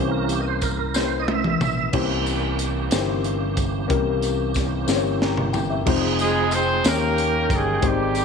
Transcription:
0.00 1.56 C2 loud
0.00 0.91 C3 medium
0.00 0.39 E3 medium
0.00 0.40 A#3 medium
0.00 0.70 A#3 medium
0.00 0.40 C#4 medium
0.00 0.71 C#4 medium
0.00 0.71 E4 medium
0.00 0.11 G4 medium
0.00 0.72 C5 medium
0.11 0.29 A#4 medium
0.28 0.42 G4 medium
0.28 closed hi-hat soft
0.28 tambourine soft
0.41 0.46 D#5 medium
0.47 0.64 C5 medium
0.61 0.78 A#4 medium
0.61 kick medium
0.61 closed hi-hat medium
0.61 tambourine medium
0.79 0.96 A#4 medium
0.94 1.69 A#3 medium
0.94 1.69 C#4 medium
0.94 1.70 E4 medium
0.94 1.02 B4 medium
0.94 1.21 C5 medium
0.94 snare medium
0.94 tambourine medium
1.03 1.74 C5 medium
1.20 1.27 D#5 medium
1.28 1.90 E5 loud
1.28 high tom medium
1.44 mid tom medium
1.60 1.90 A#1 medium
1.60 mid tom loud
1.60 tambourine soft
1.92 2.88 C2 loud
1.92 2.87 C3 medium
1.92 5.82 C3 medium
1.92 5.83 E3 medium
1.92 2.67 A#3 medium
1.92 5.83 A#3 medium
1.92 2.67 C#4 medium
1.92 5.82 C#4 medium
1.92 2.68 E4 medium
1.92 2.68 G4 medium
1.92 5.83 G4 medium
1.92 2.68 C5 medium
1.92 kick loud
1.92 crash medium
2.26 closed hi-hat soft
2.26 tambourine soft
2.59 closed hi-hat medium
2.59 tambourine soft
2.90 3.86 G1 medium
2.90 3.65 A#3 medium
2.90 3.66 C#4 medium
2.90 2.98 D#4 medium
2.90 3.66 G4 medium
2.90 3.66 C5 medium
2.90 snare loud
2.90 closed hi-hat medium
2.90 tambourine medium
2.98 3.69 E4 medium
3.24 closed hi-hat soft
3.57 kick medium
3.57 closed hi-hat medium
3.57 tambourine soft
3.88 4.84 C2 loud
3.88 4.84 C3 medium
3.88 4.63 A#3 loud
3.88 4.64 C#4 medium
3.88 4.64 E4 medium
3.88 4.64 G4 medium
3.88 4.65 A#4 loud
3.88 kick loud
3.88 closed hi-hat medium
4.22 closed hi-hat soft
4.22 tambourine medium
4.54 kick medium
4.54 snare soft
4.54 closed hi-hat medium
4.54 tambourine medium
4.87 5.82 G1 medium
4.87 5.62 A#3 medium
4.87 5.62 C#4 medium
4.87 5.62 E4 medium
4.87 5.63 G4 medium
4.87 4.95 C5 medium
4.87 snare medium
4.87 tambourine medium
4.96 5.66 C#5 medium
5.21 5.52 A#5 medium
5.21 snare medium
5.37 mid tom medium
5.53 5.69 G5 medium
5.53 floor tom loud
5.53 tambourine soft
5.70 6.01 E5 medium
5.86 6.80 F1 loud
5.86 6.85 F3 medium
5.86 6.60 G#3 medium
5.86 6.84 G#3 medium
5.86 6.85 C4 medium
5.86 6.61 C4 medium
5.86 6.84 D#4 medium
5.86 6.61 D#4 medium
5.86 6.61 F4 medium
5.86 5.93 G4 medium
5.86 6.61 C5 loud
5.86 kick loud
5.86 crash loud
5.93 6.88 G#4 medium
6.19 6.51 G#3 medium
6.19 6.51 G#4 loud
6.19 closed hi-hat medium
6.19 tambourine medium
6.51 6.85 C4 medium
6.51 6.85 C5 loud
6.51 closed hi-hat medium
6.51 tambourine medium
6.84 7.46 D#2 loud
6.84 7.79 D#3 medium
6.84 7.80 D#3 medium
6.84 7.58 A#3 medium
6.84 7.83 A#3 medium
6.84 7.52 A#3 medium
6.84 7.59 C#4 medium
6.84 7.83 C#4 medium
6.84 7.80 C#4 medium
6.84 7.59 D#4 medium
6.84 7.59 G4 medium
6.84 7.79 G4 medium
6.84 7.52 A#4 loud
6.84 7.60 C#5 medium
6.84 7.83 G5 medium
6.84 snare loud
6.84 closed hi-hat medium
6.84 tambourine loud
7.18 closed hi-hat medium
7.49 7.80 G1 loud
7.49 kick medium
7.49 closed hi-hat medium
7.49 tambourine soft
7.54 7.85 G#3 loud
7.54 7.85 G#4 loud
7.81 8.25 G#1 loud
7.81 8.25 G#2 medium
7.81 8.25 D#3 medium
7.81 8.25 G#3 medium
7.81 8.25 C4 medium
7.81 8.25 D#4 medium
7.81 7.89 F#4 medium
7.81 8.25 G4 medium
7.81 8.25 C5 medium
7.81 kick loud
7.81 closed hi-hat medium
7.86 8.25 G3 medium
7.86 8.25 G4 loud
7.86 8.25 G4 medium
8.15 closed hi-hat soft
8.15 tambourine medium

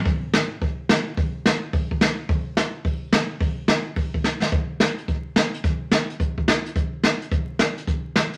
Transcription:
0.05 kick loud
0.05 open hi-hat medium
0.33 snare loud
0.62 kick loud
0.62 open hi-hat soft
0.89 snare loud
1.17 kick loud
1.17 open hi-hat medium
1.46 snare loud
1.73 kick loud
1.73 open hi-hat medium
1.91 kick medium
2.01 snare loud
2.29 kick loud
2.29 open hi-hat medium
2.57 snare loud
2.84 kick loud
2.84 open hi-hat medium
3.13 snare loud
3.40 kick loud
3.40 open hi-hat medium
3.68 snare loud
3.96 kick loud
3.96 open hi-hat medium
4.14 kick medium
4.24 snare medium
4.42 snare medium
4.52 kick loud
4.52 closed hi-hat medium
4.80 snare loud
4.80 closed hi-hat medium
4.98 closed hi-hat medium
5.08 kick loud
5.08 closed hi-hat medium
5.36 snare loud
5.36 closed hi-hat medium
5.54 closed hi-hat medium
5.64 kick loud
5.64 closed hi-hat medium
5.91 snare loud
5.91 closed hi-hat medium
6.10 closed hi-hat medium
6.20 kick loud
6.20 closed hi-hat medium
6.38 kick medium
6.48 snare loud
6.48 closed hi-hat medium
6.66 closed hi-hat medium
6.76 kick loud
6.76 closed hi-hat medium
7.04 snare loud
7.04 closed hi-hat medium
7.22 closed hi-hat medium
7.31 kick loud
7.31 closed hi-hat medium
7.59 snare loud
7.59 closed hi-hat medium
7.77 closed hi-hat medium
7.87 kick loud
7.87 closed hi-hat medium
8.16 snare loud
8.16 closed hi-hat medium
8.33 closed hi-hat medium

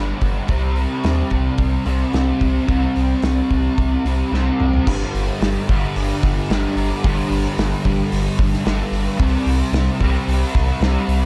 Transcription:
0.00 0.13 G1 loud
0.00 0.48 G2 medium
0.00 0.47 D3 medium
0.00 0.49 G3 medium
0.21 0.40 G1 medium
0.21 kick medium
0.21 open hi-hat medium
0.48 0.86 C2 medium
0.48 1.84 C3 medium
0.48 1.86 G3 loud
0.48 1.84 C4 loud
0.48 kick loud
0.48 open hi-hat medium
0.76 open hi-hat medium
1.04 1.23 D#2 medium
1.04 snare loud
1.04 open hi-hat medium
1.30 1.49 C2 medium
1.30 kick medium
1.30 open hi-hat soft
1.58 1.77 C2 medium
1.58 kick loud
1.58 open hi-hat medium
1.85 2.05 C2 medium
1.85 2.12 C3 medium
1.85 2.14 G3 medium
1.85 2.12 C4 medium
1.85 open hi-hat medium
2.13 2.32 C2 medium
2.13 2.65 C3 medium
2.13 2.68 G3 medium
2.13 2.68 C4 medium
2.13 snare loud
2.13 open hi-hat medium
2.41 2.59 C2 medium
2.41 kick medium
2.41 open hi-hat medium
2.67 2.87 C2 medium
2.67 4.02 C3 medium
2.67 4.03 G3 loud
2.67 4.03 C4 loud
2.67 kick loud
2.67 open hi-hat medium
2.96 3.15 C2 loud
2.96 open hi-hat medium
3.22 3.41 C2 medium
3.22 snare loud
3.22 open hi-hat medium
3.51 3.69 C2 medium
3.51 kick medium
3.51 open hi-hat soft
3.78 3.96 C2 medium
3.78 kick loud
3.78 open hi-hat medium
4.05 4.23 C2 medium
4.05 4.31 C3 medium
4.05 4.32 G3 medium
4.05 4.31 C4 medium
4.05 open hi-hat medium
4.32 4.50 C2 medium
4.32 4.85 C3 medium
4.32 4.85 G3 medium
4.32 4.86 C4 medium
4.32 snare medium
4.60 4.78 C2 medium
4.60 mid tom medium
4.74 floor tom medium
4.87 5.04 G1 medium
4.87 5.70 G2 medium
4.87 5.67 D3 loud
4.87 5.68 G3 loud
4.87 kick loud
4.87 crash loud
5.14 5.31 G1 loud
5.14 open hi-hat medium
5.41 5.57 G1 medium
5.41 snare loud
5.41 open hi-hat medium
5.68 5.85 G1 medium
5.68 6.49 G2 medium
5.68 6.48 D3 medium
5.68 6.51 G3 medium
5.68 kick medium
5.68 open hi-hat medium
5.96 6.12 G1 medium
5.96 open hi-hat medium
6.23 6.39 G1 medium
6.23 kick loud
6.23 snare soft
6.23 open hi-hat medium
6.50 6.66 G1 medium
6.50 7.02 G2 medium
6.50 7.02 D3 medium
6.50 7.06 G3 medium
6.50 snare loud
6.50 open hi-hat medium
6.76 6.92 G1 medium
6.76 open hi-hat medium
7.04 7.21 G1 loud
7.04 7.84 G2 medium
7.04 7.84 D3 loud
7.04 7.84 G3 loud
7.04 kick loud
7.04 open hi-hat medium
7.30 7.47 G1 loud
7.30 open hi-hat medium
7.58 7.74 G1 medium
7.58 snare loud
7.58 open hi-hat medium
7.84 8.02 G1 loud
7.84 8.63 G2 medium
7.84 8.65 D3 medium
7.84 8.66 G3 medium
7.84 kick medium
7.84 open hi-hat medium
8.12 8.28 G1 loud
8.12 open hi-hat medium
8.39 8.55 G1 medium
8.39 kick loud
8.39 snare soft
8.39 open hi-hat medium
8.53 snare soft
8.64 8.82 G1 loud
8.64 9.18 G2 medium
8.64 9.17 D3 loud
8.64 9.19 G3 loud
8.64 snare loud
8.64 open hi-hat medium
8.91 9.08 G1 medium
8.91 open hi-hat medium
9.18 9.36 C2 medium
9.18 10.03 C3 loud
9.18 10.01 G3 loud
9.18 10.00 C4 loud
9.18 kick loud
9.18 open hi-hat medium
9.46 9.63 C2 medium
9.46 open hi-hat medium
9.72 9.89 C2 medium
9.72 snare loud
9.72 open hi-hat medium
10.00 10.17 C2 medium
10.00 10.80 C3 medium
10.00 10.82 G3 medium
10.00 10.80 C4 loud
10.00 kick medium
10.00 open hi-hat medium
10.28 10.44 C2 medium
10.28 open hi-hat medium
10.55 10.71 C2 loud
10.55 kick medium
10.55 snare soft
10.55 open hi-hat medium
10.80 10.97 C2 medium
10.80 11.26 C3 medium
10.80 11.26 G3 medium
10.80 11.26 C4 loud
10.80 snare loud
10.80 open hi-hat medium
11.08 11.25 C2 medium
11.08 open hi-hat medium

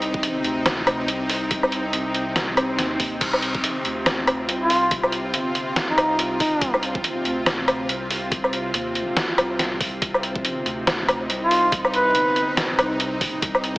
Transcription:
0.00 0.43 C2 loud
0.00 13.78 C3 medium
0.00 13.78 C4 medium
0.00 3.19 D#4 medium
0.00 closed hi-hat soft
0.14 kick loud
0.23 closed hi-hat medium
0.44 1.07 D2 loud
0.44 closed hi-hat medium
0.66 snare loud
0.66 closed hi-hat medium
0.66 low woodblock medium
0.87 closed hi-hat medium
0.87 low woodblock medium
1.08 1.92 C2 loud
1.08 closed hi-hat medium
1.29 open hi-hat loud
1.51 kick loud
1.51 closed hi-hat medium
1.63 low woodblock medium
1.72 closed hi-hat medium
1.93 2.77 C2 loud
1.93 closed hi-hat medium
2.14 closed hi-hat medium
2.36 snare loud
2.36 closed hi-hat medium
2.36 swell medium
2.57 closed hi-hat medium
2.57 low woodblock medium
2.78 3.20 D#2 loud
2.78 snare medium
2.78 closed hi-hat medium
3.00 kick loud
3.00 open hi-hat loud
3.21 3.83 C2 loud
3.21 10.00 F4 loud
3.21 kick loud
3.21 closed hi-hat medium
3.21 crash medium
3.33 low woodblock medium
3.42 closed hi-hat medium
3.55 kick loud
3.64 closed hi-hat medium
3.85 4.47 D2 loud
3.85 closed hi-hat medium
4.06 snare loud
4.06 closed hi-hat medium
4.06 low woodblock medium
4.27 closed hi-hat medium
4.27 low woodblock medium
4.49 5.32 C2 loud
4.49 closed hi-hat medium
4.61 4.91 F4 medium
4.70 open hi-hat loud
4.91 kick loud
4.91 closed hi-hat medium
5.03 low woodblock medium
5.12 closed hi-hat medium
5.34 5.96 G1 medium
5.34 closed hi-hat medium
5.55 closed hi-hat medium
5.76 snare loud
5.76 closed hi-hat medium
5.89 6.19 D#4 medium
5.97 6.60 C2 medium
5.97 closed hi-hat medium
5.97 low woodblock medium
6.19 closed hi-hat medium
6.40 6.74 D#4 loud
6.40 kick loud
6.40 open hi-hat loud
6.61 7.24 C2 loud
6.61 kick loud
6.61 closed hi-hat medium
6.74 low woodblock medium
6.83 closed hi-hat medium
6.95 kick loud
7.04 closed hi-hat medium
7.25 7.88 D2 loud
7.25 closed hi-hat medium
7.46 snare loud
7.46 closed hi-hat medium
7.46 low woodblock medium
7.68 closed hi-hat medium
7.68 low woodblock medium
7.89 8.73 C2 loud
7.89 closed hi-hat medium
8.10 open hi-hat medium
8.32 kick loud
8.32 closed hi-hat medium
8.44 low woodblock medium
8.53 closed hi-hat medium
8.74 9.15 D#2 medium
8.74 closed hi-hat medium
8.95 closed hi-hat medium
9.17 snare loud
9.17 closed hi-hat medium
9.38 10.00 C2 loud
9.38 closed hi-hat medium
9.38 low woodblock medium
9.59 snare medium
9.59 closed hi-hat medium
9.81 kick loud
9.81 open hi-hat medium
10.02 10.64 C2 loud
10.02 13.78 D#4 medium
10.02 kick loud
10.02 closed hi-hat medium
10.14 low woodblock medium
10.23 closed hi-hat medium
10.36 kick loud
10.45 closed hi-hat medium
10.66 11.28 D2 loud
10.66 closed hi-hat medium
10.87 snare loud
10.87 closed hi-hat medium
10.87 low woodblock medium
11.09 closed hi-hat medium
11.09 low woodblock medium
11.30 12.13 C2 loud
11.30 closed hi-hat medium
11.42 11.72 F4 loud
11.51 open hi-hat medium
11.72 kick loud
11.72 closed hi-hat medium
11.85 low woodblock medium
11.93 12.54 B4 loud
11.93 closed hi-hat soft
12.15 12.77 G1 loud
12.15 closed hi-hat medium
12.36 closed hi-hat medium
12.57 snare loud
12.57 closed hi-hat medium
12.78 13.41 C2 loud
12.78 closed hi-hat medium
12.78 low woodblock medium
13.00 closed hi-hat medium
13.21 kick loud
13.21 open hi-hat loud
13.42 13.78 C2 loud
13.42 kick loud
13.42 closed hi-hat medium
13.55 low woodblock medium
13.64 closed hi-hat medium

